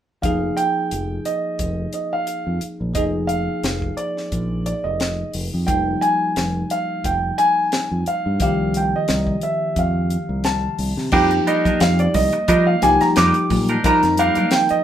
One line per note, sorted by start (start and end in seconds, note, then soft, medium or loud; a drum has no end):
0.22 0.49 F1 medium
0.22 2.91 F3 soft
0.22 2.92 A#3 soft
0.22 2.92 D#4 soft
0.22 2.93 G#4 medium
0.22 0.58 F5 medium
0.22 kick medium
0.22 closed hi-hat medium
0.57 1.27 G5 medium
0.57 closed hi-hat soft
0.91 1.18 F1 medium
0.91 closed hi-hat medium
1.25 1.92 D#5 medium
1.25 closed hi-hat soft
1.59 1.85 F1 medium
1.59 kick medium
1.59 closed hi-hat medium
1.93 2.11 D#5 medium
1.93 closed hi-hat soft
2.13 2.59 F5 medium
2.27 closed hi-hat medium
2.47 2.58 F2 medium
2.61 muted fingered electric bass stroke soft
2.61 closed hi-hat medium
2.81 2.92 A#1 medium
2.94 3.47 F1 medium
2.94 5.63 F3 soft
2.94 5.64 A#3 soft
2.94 5.64 D#4 soft
2.94 5.65 G#4 medium
2.94 3.03 D#5 medium
2.94 kick medium
2.94 closed hi-hat medium
3.27 3.93 F5 medium
3.27 closed hi-hat soft
3.64 3.90 F1 medium
3.64 snare medium
3.64 closed hi-hat medium
3.82 kick medium
3.97 4.62 D5 medium
3.97 closed hi-hat soft
4.17 snare soft
4.32 4.72 A#1 medium
4.32 kick medium
4.32 closed hi-hat medium
4.66 4.85 D5 medium
4.66 closed hi-hat soft
4.84 5.22 F1 medium
4.84 5.30 D#5 medium
5.00 snare medium
5.00 closed hi-hat medium
5.34 5.49 F1 medium
5.34 open hi-hat medium
5.54 5.65 F2 medium
5.67 5.94 F1 medium
5.67 8.36 F3 medium
5.67 8.38 G3 medium
5.67 8.37 A#3 soft
5.67 8.38 D#4 soft
5.67 6.03 G5 medium
5.67 kick medium
5.67 closed hi-hat medium
6.01 6.72 G#5 medium
6.01 closed hi-hat soft
6.36 6.63 F1 medium
6.36 snare medium
6.36 closed hi-hat medium
6.70 7.06 F5 medium
6.70 closed hi-hat soft
7.04 7.30 F1 medium
7.04 7.40 G5 medium
7.04 kick medium
7.04 closed hi-hat medium
7.38 8.03 G#5 loud
7.38 closed hi-hat medium
7.72 snare medium
7.72 closed hi-hat medium
7.91 8.03 F2 medium
8.06 8.41 F5 medium
8.06 muted fingered electric bass stroke soft
8.06 closed hi-hat medium
8.26 8.38 G2 medium
8.39 8.92 C2 medium
8.39 11.09 D#3 soft
8.39 11.08 F3 medium
8.39 11.09 A#3 soft
8.39 11.10 G4 medium
8.39 8.77 F5 medium
8.39 kick medium
8.39 closed hi-hat medium
8.74 8.95 G5 medium
8.74 closed hi-hat medium
8.96 9.41 D#5 medium
9.08 9.35 C2 medium
9.08 snare medium
9.08 closed hi-hat medium
9.27 kick medium
9.41 9.78 E5 medium
9.41 closed hi-hat soft
9.76 10.16 F2 medium
9.76 10.76 F5 medium
9.76 kick medium
9.76 closed hi-hat medium
10.10 closed hi-hat medium
10.29 10.67 C2 medium
10.44 11.15 A5 medium
10.44 snare medium
10.44 closed hi-hat medium
10.79 10.93 C2 medium
10.79 open hi-hat medium
10.97 11.09 C3 medium
10.97 snare soft
11.11 11.39 F2 medium
11.11 14.84 D#3 medium
11.11 12.35 F3 medium
11.11 14.84 G3 medium
11.11 11.31 G3 medium
11.11 14.84 A#3 medium
11.11 12.35 A#3 medium
11.11 11.31 D4 medium
11.11 14.84 D#4 medium
11.11 12.36 D#4 medium
11.11 11.31 D#4 medium
11.11 12.36 G4 medium
11.11 11.30 A#4 medium
11.11 11.48 G5 medium
11.11 kick loud
11.11 crash medium
11.31 muted clean electric guitar stroke soft
11.31 closed hi-hat soft
11.47 11.65 G3 medium
11.47 11.65 D4 medium
11.47 11.65 D#4 medium
11.47 11.64 A#4 medium
11.47 11.79 D#5 medium
11.47 closed hi-hat medium
11.65 11.80 D4 soft
11.65 11.80 D#4 soft
11.65 11.80 A#4 soft
11.65 muted fingered electric bass stroke soft
11.65 kick medium
11.65 closed hi-hat soft
11.65 high conga medium
11.65 low conga medium
11.80 12.06 F2 loud
11.80 11.98 F5 medium
11.80 muted clean electric guitar stroke soft
11.80 snare loud
11.80 closed hi-hat medium
11.99 12.15 D5 medium
11.99 closed hi-hat soft
12.14 12.29 C2 medium
12.14 12.48 D#5 medium
12.14 muted clean electric guitar stroke soft
12.14 kick medium
12.14 open hi-hat medium
12.14 low conga medium
12.33 muted clean electric guitar stroke soft
12.33 closed hi-hat soft
12.48 12.74 F3 medium
12.48 12.67 G3 medium
12.48 12.66 D4 medium
12.48 12.66 D#4 medium
12.48 12.66 A#4 medium
12.48 12.66 D#5 medium
12.48 kick medium
12.48 closed hi-hat medium
12.67 12.81 F5 medium
12.67 muted clean electric guitar stroke soft
12.82 12.97 C2 medium
12.82 13.74 F3 medium
12.82 13.74 A#3 medium
12.82 13.75 D#4 medium
12.82 13.75 G4 medium
12.82 13.00 G#5 medium
12.82 muted clean electric guitar stroke soft
12.82 snare soft
12.82 closed hi-hat medium
12.82 high conga medium
13.01 13.06 A#5 medium
13.01 muted fingered electric bass stroke soft
13.01 snare soft
13.01 closed hi-hat soft
13.16 13.31 F2 medium
13.16 13.35 G3 medium
13.16 13.35 D4 medium
13.16 13.35 D#4 medium
13.16 13.35 A#4 medium
13.16 13.87 D6 loud
13.16 snare loud
13.16 closed hi-hat medium
13.34 muted clean electric guitar stroke soft
13.34 closed hi-hat soft
13.50 13.76 A#2 medium
13.50 muted clean electric guitar stroke soft
13.50 kick medium
13.50 open hi-hat medium
13.50 high conga medium
13.50 low conga medium
13.69 13.84 D4 soft
13.69 13.85 D#4 soft
13.69 13.85 A#4 medium
13.69 closed hi-hat soft
13.84 14.84 F3 medium
13.84 14.03 G3 medium
13.84 14.84 A#3 medium
13.84 14.03 D4 medium
13.84 14.84 D#4 medium
13.84 14.03 D#4 medium
13.84 14.84 A#4 medium
13.84 14.02 A#4 medium
13.84 14.20 A#5 loud
13.84 kick loud
13.84 closed hi-hat medium
14.03 14.29 F2 medium
14.03 muted clean electric guitar stroke soft
14.03 snare soft
14.03 closed hi-hat soft
14.17 14.37 G3 medium
14.17 14.37 D4 medium
14.17 14.37 D#4 medium
14.17 14.36 A#4 medium
14.17 14.54 F5 medium
14.17 closed hi-hat medium
14.35 14.52 D4 soft
14.35 14.52 D#4 soft
14.35 14.52 A#4 medium
14.35 closed hi-hat soft
14.35 low conga medium
14.51 14.71 G5 medium
14.51 muted clean electric guitar stroke soft
14.51 snare loud
14.51 closed hi-hat medium
14.69 14.84 D#5 medium
14.69 muted fingered electric bass stroke soft
14.69 closed hi-hat soft